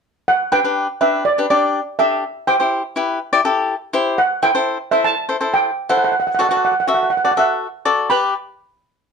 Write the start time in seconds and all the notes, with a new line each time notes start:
0.28 F#5
0.52 D4 G4 B4 G5
0.64 D4 G4 B4
1.01 D4 G4 B4 E5
1.25 D5
1.38 D4 G4 B4
1.50 D4 G4 D5
1.99 D4 G4 A4 E5
2.47 E4 G4 C5 G5
2.60 E4 G4 C5
2.96 E4 G4 B4
3.33 E4 G4 D5
3.45 E4 G4 A4
3.93 E4 G4 C5
4.18 F#5
4.43 E4 A4 C5 G5
4.55 E4 A4 C5
4.91 E4 A4 C5 E5
5.04 A5
5.29 E4 A4 C5
5.41 E4 A4 C5
5.54 G5
5.89 E4 A4 C5 F#5
5.97 F#5
6.04 F#5
6.12 F#5
6.20 F#5
6.27 F#5
6.35 F#5
6.39 F#4 A4 D5 F#5
6.49 F#4 A4 D5 F#5
6.57 F#5
6.65 F#5
6.72 F#5
6.80 F#5
6.87 F#4 A4 E5 F#5
6.94 F#5
7.03 F#5
7.10 F#5
7.17 F#5
7.25 F#4 A4 D5 F#5
7.31 F#5
7.37 F#4 A4 E5 F#5
7.85 F#4 A4 D5
8.10 G4 B4 D5 B5